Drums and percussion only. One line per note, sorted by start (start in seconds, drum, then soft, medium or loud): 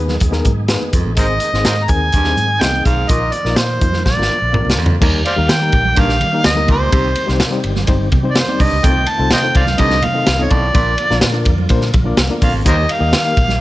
0.08 snare soft
0.08 low conga medium
0.20 kick medium
0.20 closed hi-hat medium
0.20 low conga medium
0.32 snare soft
0.45 kick medium
0.45 closed hi-hat medium
0.45 muted conga soft
0.45 low conga medium
0.68 snare loud
0.68 closed hi-hat medium
0.68 high conga medium
0.82 high conga medium
0.93 kick medium
0.93 closed hi-hat medium
1.07 high conga soft
1.17 kick loud
1.17 closed hi-hat loud
1.17 muted conga soft
1.40 closed hi-hat medium
1.40 muted conga soft
1.54 snare soft
1.65 snare loud
1.65 closed hi-hat loud
1.65 high conga medium
1.88 kick medium
1.88 closed hi-hat medium
2.12 kick medium
2.12 closed hi-hat medium
2.24 snare soft
2.37 closed hi-hat medium
2.37 muted conga soft
2.37 low conga medium
2.61 snare loud
2.61 closed hi-hat medium
2.61 high conga medium
2.72 high conga medium
2.85 kick medium
2.85 closed hi-hat medium
2.96 high conga soft
3.08 kick loud
3.08 closed hi-hat loud
3.08 muted conga soft
3.32 closed hi-hat medium
3.32 muted conga soft
3.45 snare soft
3.56 snare loud
3.56 closed hi-hat medium
3.56 high conga medium
3.81 kick medium
3.81 closed hi-hat medium
3.92 snare soft
3.92 low conga medium
4.06 kick medium
4.06 snare medium
4.06 low conga medium
4.22 snare medium
4.29 muted conga soft
4.29 low conga medium
4.53 mid tom medium
4.53 high conga medium
4.65 high conga medium
4.70 snare medium
4.86 floor tom medium
4.90 high conga soft
5.02 kick loud
5.02 crash loud
5.02 muted conga medium
5.26 ride medium
5.26 muted conga soft
5.49 snare loud
5.49 ride medium
5.49 high conga medium
5.72 kick loud
5.72 ride medium
5.85 low conga medium
5.96 kick medium
5.96 ride medium
6.09 snare soft
6.21 ride medium
6.21 muted conga soft
6.21 low conga medium
6.44 snare loud
6.44 ride medium
6.44 high conga medium
6.55 high conga medium
6.68 kick medium
6.68 ride medium
6.92 kick loud
6.92 ride medium
6.92 muted conga soft
7.15 ride medium
7.15 muted conga soft
7.29 snare soft
7.40 snare loud
7.40 ride medium
7.40 high conga medium
7.64 ride medium
7.76 snare soft
7.76 low conga medium
7.87 kick medium
7.87 ride medium
7.87 low conga medium
8.12 kick medium
8.12 ride medium
8.12 muted conga soft
8.12 low conga medium
8.35 snare loud
8.35 ride medium
8.35 high conga medium
8.49 high conga medium
8.60 kick medium
8.60 open hi-hat medium
8.60 ride medium
8.84 kick loud
8.84 hi-hat pedal medium
8.84 ride medium
8.84 muted conga soft
9.06 ride medium
9.06 muted conga soft
9.31 snare loud
9.31 ride medium
9.31 high conga medium
9.55 kick medium
9.55 ride medium
9.67 snare soft
9.67 low conga medium
9.78 kick medium
9.78 ride medium
9.90 snare soft
10.02 ride medium
10.02 muted conga soft
10.02 low conga medium
10.26 snare loud
10.26 ride medium
10.26 high conga medium
10.40 high conga medium
10.50 kick medium
10.50 ride medium
10.75 kick loud
10.75 ride medium
10.75 muted conga soft
10.98 ride medium
10.98 muted conga soft
11.11 snare soft
11.21 snare loud
11.21 ride medium
11.21 high conga medium
11.45 kick medium
11.45 ride medium
11.58 low conga medium
11.69 kick medium
11.69 ride medium
11.69 low conga medium
11.81 snare soft
11.94 kick medium
11.94 ride medium
11.94 muted conga soft
11.94 low conga medium
12.17 snare loud
12.17 ride medium
12.17 high conga medium
12.30 high conga medium
12.42 kick medium
12.42 open hi-hat medium
12.42 ride medium
12.54 high conga medium
12.66 kick loud
12.66 hi-hat pedal medium
12.66 ride medium
12.66 muted conga medium
12.89 ride medium
13.13 snare loud
13.13 ride medium
13.13 high conga medium
13.37 kick medium
13.37 ride medium
13.48 snare soft
13.48 low conga medium